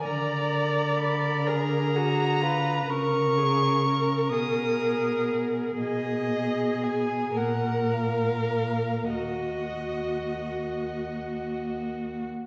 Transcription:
X:1
M:6/8
L:1/16
Q:3/8=39
K:Bbphr
V:1 name="Violin"
b4 c'2 b6 | d'6 e'4 z2 | e4 a2 g2 f4 | e8- e2 z2 |]
V:2 name="Viola"
=d6 B2 A2 c2 | B2 A2 B8 | A6 B6 | G8- G z3 |]
V:3 name="Violin"
B6 A2 G2 F2 | B6 A6 | A6 B6 | G12 |]
V:4 name="Cello" clef=bass
=D,12 | D,6 C,6 | C,6 B,,6 | E,,12 |]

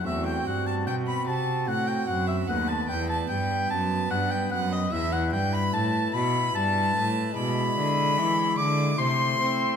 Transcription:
X:1
M:3/4
L:1/16
Q:1/4=74
K:Em
V:1 name="Oboe"
e g f a g b a2 f g f e | f a g a g2 a2 f g f ^d | e f g b a2 b2 a3 z | [K:Ephr] b6 d'2 c'4 |]
V:2 name="Violin"
e g f a g b a2 f g f e | f a g a g2 a2 f g f ^d | e f g b a2 b2 a4 | [K:Ephr] b6 d'2 c'4 |]
V:3 name="Pipe organ"
[A,CF]12 | [A,B,B]12 | [EB]12 | [K:Ephr] [^G,Ed]8 [A,Ec]4 |]
V:4 name="Pipe organ" clef=bass
E,,2 G,,2 B,,2 C,2 A,,2 F,,2 | ^D,,2 E,,2 G,,2 F,,2 G,,2 F,,2 | E,,2 G,,2 A,,2 B,,2 G,,2 A,,2 | [K:Ephr] B,,2 D,2 E,2 D,2 C,2 C2 |]
V:5 name="Cello" clef=bass
E,,2 G,,2 B,,2 C,2 A,,2 F,,2 | ^D,,2 E,,2 G,,2 F,,2 G,,2 F,,2 | E,,2 G,,2 A,,2 B,,2 G,,2 A,,2 | [K:Ephr] B,,2 D,2 E,2 D,2 C,2 C2 |]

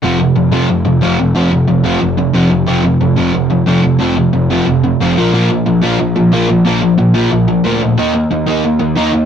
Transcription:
X:1
M:4/4
L:1/8
Q:1/4=181
K:Bbmix
V:1 name="Overdriven electric guitar" clef=bass
[F,,C,F,] [F,,C,] [F,,C,] [F,,C,F,] [F,,C,] [F,,C,] [F,,C,F,] [F,,C,] | [F,,C,F,] [F,,C,] [F,,C,] [F,,C,F,] [F,,C,] [F,,C,] [F,,C,F,] [F,,C,] | [F,,C,F,] [F,,C,] [F,,C,] [F,,C,F,] [F,,C,] [F,,C,] [F,,C,F,] [F,,C,] | [F,,C,F,] [F,,C,] [F,,C,] [F,,C,F,] [F,,C,] [F,,C,] [F,,C,F,] [B,,F,B,] |
[B,,F,B,] [B,,F,] [B,,F,] [B,,F,B,] [B,,F,] [B,,F,] [B,,F,B,] [B,,F,] | [B,,F,B,] [B,,F,] [B,,F,] [B,,F,B,] [B,,F,] [B,,F,] [B,,F,B,] [B,,F,] | [E,B,E] [E,B,] [E,B,] [E,B,E] [E,B,] [E,B,] [E,B,E] [E,B,] |]
V:2 name="Picked electric bass" clef=bass
F,,,2 F,,, F,,, F,,, F,,, F,,, F,,, | F,,,2 F,,,2 F,,,2 F,,,2 | F,,,2 F,,, F,,, F,,, F,,, F,,, F,,, | F,,,2 F,,,2 F,,,2 F,,, B,,, |
B,,,2 B,,, B,,, B,,, B,,, B,,, B,,, | B,,,2 B,,,2 B,,,2 D,,2 | E,,2 E,, E,, E,, E,, E,, E,, |]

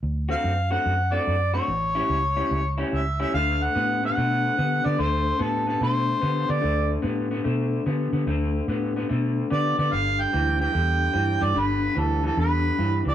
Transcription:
X:1
M:4/4
L:1/8
Q:"Swing" 1/4=146
K:D
V:1 name="Harmonica"
z =f2 ^f2 d2 c- | c6 e e | =f ^f2 f4 d | =c2 A A c3 d- |
d z6 z | z6 d d | =f g2 g4 d | B2 A A B3 d |]
V:2 name="Clean electric guitar" clef=bass
z [D,A,=CF] z [D,A,CF] z [D,A,CF] z [D,A,CF] | z [A,,G,CE] z [A,,G,CE] z [A,,G,CE] z [A,,G,CE] | [D,A,]2 [D,B,] [D,B,] [D,A,]2 [D,B,] [D,B,] | [D,A,]2 [D,B,] [D,B,] [D,A,]2 [D,B,] [D,B,] |
[D,A,]2 [D,B,] [D,B,] [D,A,]2 [D,B,] [D,B,] | [D,A,]2 [D,B,] [D,B,] [D,A,]2 [D,B,] [D,B,] | [G,,D,]2 [G,,E,] [G,,E,] [G,,D,]2 [G,,E,] [G,,E,] | [G,,D,]2 [G,,E,] [G,,E,] [G,,D,]2 [G,,E,] [G,,E,] |]
V:3 name="Fingered electric bass" clef=bass
D,,2 F,,2 F,,2 F,,2 | A,,,2 C,,2 C,,2 C,,2 | D,,2 A,,2 B,,2 D, D, | D,,2 A,,2 B,,2 D, D, |
D,,2 A,,2 B,,2 D, D, | D,,2 A,,2 B,,2 D, D, | G,,,2 D,,2 E,,2 G,, G,, | G,,,2 D,,2 E,,2 G,, C,, |]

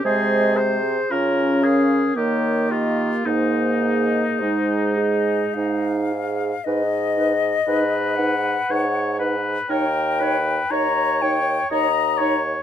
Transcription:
X:1
M:3/4
L:1/8
Q:1/4=58
K:Ab
V:1 name="Flute"
e c d f d e | c e c e f2 | [K:G#m] d3 f3 | =g2 a g a z |]
V:2 name="Clarinet"
c A F B B G | E A E A E A | [K:G#m] B B B B B B | c c c c c c |]
V:3 name="Oboe"
A c B A G F | E4- E z | [K:G#m] z2 B2 c B | A B c2 d c |]
V:4 name="French horn"
A, z D2 B,2 | B,2 A,3 z | [K:G#m] D D D D D D | D D D D D D |]
V:5 name="Bassoon" clef=bass
C,2 D,2 E,2 | A,,2 A,,2 A,,2 | [K:G#m] G,,2 G,,2 G,,2 | D,,2 D,,2 D,,2 |]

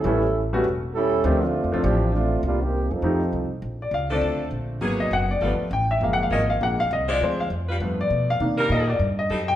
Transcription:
X:1
M:4/4
L:1/8
Q:"Swing" 1/4=201
K:Bb
V:1 name="Saxophone section"
z8 | z8 | z8 | z3 [F,DA]3 z2 |
[_G,E_A]3 z [=G,=B,F=A] z3 | z2 [_G,_DFB] z4 [_A,=DFc]- | [_A,DFc]2 z [G,DF_c] z4 | z [G,CB]3 z2 [G,CEA] z |]
V:2 name="Trombone section"
[G,_D=EA]3 z3 [G,^CEA]2 | [E,A,CG] [A,CDF]2 [F,CDA] [F,CDG]2 [A,CDF]2 | [G,B,DF] [E,B,CG]2 [F,CEA]4 z | z8 |
z8 | z8 | z8 | z8 |]
V:3 name="Grand piano"
[G,A,_C^C=E] z2 [G,A,_C^C_G] z4 | [F,A,CDF] z2 [F,A,CDF]3 z2 | z4 [F,A,CEG] z3 | z d f d2 z3 |
z e _g d2 z =g =e | (3f _g f e f g f e d | c f z3 d2 f- | f2 e d z e2 g |]
V:4 name="Grand piano"
z8 | z8 | z8 | z3 [D,A,C]4- [D,A,C] |
[_G,B,_C]3 z [F,A,=B,] z3 | [F,_A,B,]3 z [F,A,B,] z3 | [F,_A,C] z3 [F,=A,=B,]4 | [E,B,D]3 z4 z |]
V:5 name="Upright bass" clef=bass
A,,,4 =E,,,4 | D,,2- (3D,, F,, _D,, A,,,4 | C,,3 _G,, F,,2 C,,2 | B,,,2 _D,,2 =D,,2 B,,,2 |
_A,,,2 _G,,,2 =G,,, z =A,,,2 | _G,,,2 _A,,,2 B,,,2 C,,2 | D,,2 F,,2 G,,2 =B,,2 | C,2 B,,2 G,,2 _G,,2 |]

